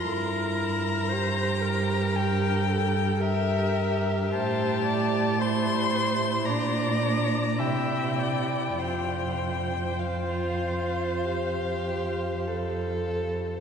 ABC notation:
X:1
M:4/4
L:1/8
Q:1/4=53
K:F
V:1 name="Violin"
b4 g2 e2 | a2 c'2 b2 g2 | g2 f4- f z |]
V:2 name="Viola"
B2 c B B A B2 | c d c2 d2 e d | c6- c z |]
V:3 name="Violin"
E2 G4 G2- | G2 E2 D D E2 | F2 F2 G2 A2 |]
V:4 name="Cello" clef=bass
G,,8 | A,,4 B,,2 C,2 | F,,8 |]